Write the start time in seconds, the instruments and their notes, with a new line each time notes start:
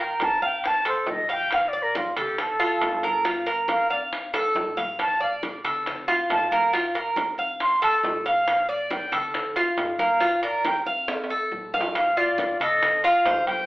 Already playing: upright bass G1
0.00 cuban tres A#4, flute G5, high conga
0.20 flute A5, high bongo, high conga, high timbale, low timbale
0.42 upright bass F1, cuban tres F5, flute G5, high bongo, high conga
0.64 flute A5, high bongo, high conga, high timbale
0.85 cuban tres A4, flute C5, high conga, high timbale
1.07 upright bass A#1, flute D#5, high bongo, low bongo, high conga, low timbale
1.29 cuban tres F5, flute G5, high bongo, high timbale
1.51 flute F5, high bongo, high conga, high timbale
1.68 flute D5
1.73 cuban tres D5, high conga
1.82 flute A#4
1.95 flute F4, high bongo, high conga, high timbale, low timbale
2.17 upright bass F1, flute G4, cuban tres A4, high bongo, high conga, low conga, high timbale
2.38 flute A4, high bongo, high conga, low conga, high timbale
2.60 cuban tres F4, high conga, high timbale
2.81 upright bass G1, high bongo, low bongo, high conga, high timbale, low timbale
3.03 cuban tres A#4, high bongo, high conga, high timbale
3.25 cuban tres F4, high bongo, high conga, high timbale
3.46 cuban tres A#4, high conga, high timbale
3.68 flute F5, high bongo, high conga, high timbale, low timbale
3.90 upright bass F1, flute D5, cuban tres F5, high bongo, high conga
4.12 high bongo, high conga, high timbale
4.34 cuban tres A4, high bongo, high conga, high timbale
4.55 upright bass A#1, high conga, low timbale
4.77 cuban tres F5, low bongo, high conga, high timbale
4.99 flute A5, high bongo, high conga, high timbale
5.20 cuban tres D5, flute F5, high conga
5.43 high bongo, high conga, high timbale, low timbale
5.64 upright bass F1, cuban tres A4, high bongo, high conga, low conga, high timbale
5.86 high bongo, high conga, low conga, high timbale
6.08 cuban tres F4, high conga, high timbale
6.30 upright bass G1, flute A5, high bongo, low bongo, high conga, high timbale, low timbale
6.51 cuban tres A#4, flute F5, high bongo, high conga, high timbale
6.73 cuban tres F4, high bongo, high conga, high timbale
6.95 cuban tres A#4, high conga, high timbale
7.16 high bongo, high conga, high timbale, low timbale
7.38 upright bass F1, cuban tres F5, high bongo, high conga
7.60 flute C6, high bongo, high conga, high timbale
7.82 cuban tres A4, flute A5, high conga, high timbale
8.03 upright bass A#1, high bongo, low bongo, high conga, low timbale
8.26 cuban tres F5, flute F5, high bongo, high timbale
8.48 high bongo, high conga, high timbale
8.69 cuban tres D5, flute D5, high conga
8.90 flute G5, high bongo, high conga, high timbale, low timbale
9.12 upright bass F1, cuban tres A4, high bongo, high conga, low conga, high timbale
9.34 high bongo, high conga, low conga, high timbale
9.56 cuban tres F4, high conga, high timbale
9.77 upright bass G1, high bongo, low bongo, high conga, high timbale, low timbale
9.99 cuban tres A#4, flute F5, high bongo, high conga, high timbale
10.21 cuban tres F4, high bongo, high conga, high timbale
10.43 cuban tres A#4, flute D5, high conga, high timbale
10.64 flute G5, high bongo, high conga, high timbale, low timbale
10.86 upright bass F1, cuban tres F5, high bongo, high conga
11.08 high bongo, high conga, high timbale
11.24 high timbale
11.30 cuban tres A4, high conga
11.51 upright bass A#1, high bongo, low bongo, high conga
11.74 cuban tres F5, high bongo, high conga
11.81 low timbale
11.95 flute F5, high bongo, high conga, high timbale
12.17 cuban tres F4, flute D5, high conga
12.38 high bongo, high conga, high timbale, low timbale
12.60 upright bass F1, cuban tres A4, flute D#5, high bongo, high conga, low conga, high timbale
12.82 high bongo, high conga, low conga, high timbale
13.03 cuban tres F4, flute F5, high conga, high timbale
13.25 upright bass G1, cuban tres C5, high bongo, low bongo, high conga, high timbale, low timbale
13.47 flute G5, high bongo, high conga, high timbale